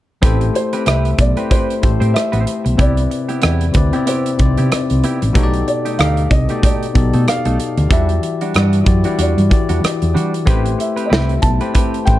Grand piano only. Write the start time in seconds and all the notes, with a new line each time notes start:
0.56 C5
0.87 E5
1.20 D5
1.52 C5
2.14 E5
2.81 D5
4.09 C5
5.68 D5
5.99 F5
6.31 D#5
6.64 D5
7.29 F5
7.92 E5
9.21 D5
10.81 E5
11.06 D#5
11.12 E5
11.42 A5
12.05 G5